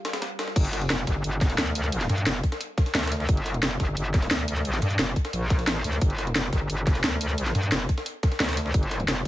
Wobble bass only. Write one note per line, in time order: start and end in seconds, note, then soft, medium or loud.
0.56 0.89 G1 medium
0.90 1.06 F1 loud
1.07 1.23 G1 loud
1.24 1.57 G1 loud
1.58 2.08 D2 loud
2.09 2.25 G2 medium
2.27 2.42 F1 loud
2.95 3.27 D2 loud
3.29 3.61 G1 loud
3.63 3.79 F1 loud
3.80 3.96 G1 loud
3.97 4.30 G1 loud
4.31 4.81 D2 loud
4.82 4.98 G2 loud
4.99 5.15 F1 medium
5.33 5.83 A#1 loud
5.84 6.00 D2 loud
6.02 6.34 G1 loud
6.36 6.51 F1 loud
6.53 6.68 G1 loud
6.70 7.02 G1 loud
7.04 7.54 D2 medium
7.55 7.71 G2 loud
7.72 7.88 F1 loud
8.40 8.73 D2 loud
8.74 9.07 G1 loud
9.08 9.24 F1 loud